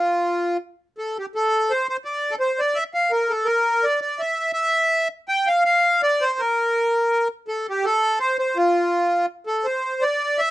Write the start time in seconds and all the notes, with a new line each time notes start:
Already playing: F4
0.98 A4
1.18 G4
1.35 A4
1.70 C5
1.89 C5
2.05 D5
2.31 A4
2.40 C5
2.59 D5
2.75 E5
2.94 F5
3.11 A#4
3.30 A4
3.45 A#4
3.84 D5
4.01 D5
4.19 E5
4.53 E5
5.28 G5
5.47 F5
5.65 F5
6.03 D5
6.21 C5
6.39 A#4
7.48 A4
7.70 G4
7.85 A4
8.20 C5
8.39 C5
8.57 F4
9.47 A4
9.64 C5
10.02 D5
10.39 E5